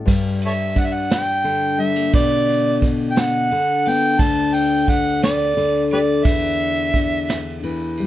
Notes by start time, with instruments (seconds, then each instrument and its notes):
Already playing: nylon-string guitar G3
0.06 nylon-string guitar G2, kick, crash
0.41 ride
0.46 harmonica A4 C#5 E5
0.75 nylon-string guitar D4, harmonica F#5, kick, ride
0.86 harmonica E5
0.93 harmonica F#5
1.10 harmonica G5, snare, ride
1.44 nylon-string guitar D3, ride
1.78 nylon-string guitar G3, harmonica E5, ride
1.96 nylon-string guitar A#3
2.13 nylon-string guitar B2, harmonica D5, kick, ride
2.48 ride
2.82 nylon-string guitar D4, kick, ride
3.11 harmonica G5
3.16 snare, ride
3.20 harmonica F#5
3.51 nylon-string guitar D3, ride
3.85 nylon-string guitar B3, harmonica G5, ride
4.19 nylon-string guitar D2, harmonica A5, kick, ride
4.54 harmonica G5, ride
4.88 nylon-string guitar D4, harmonica F#5, kick, ride
5.22 harmonica D5, snare, ride
5.57 nylon-string guitar D3, ride
5.91 nylon-string guitar A3, harmonica G4 B4 D5, ride
6.25 nylon-string guitar E2, harmonica E5, kick, ride
6.60 ride
6.94 nylon-string guitar D4, kick, ride
7.28 snare, ride
7.63 nylon-string guitar E3, ride
7.97 nylon-string guitar G3, ride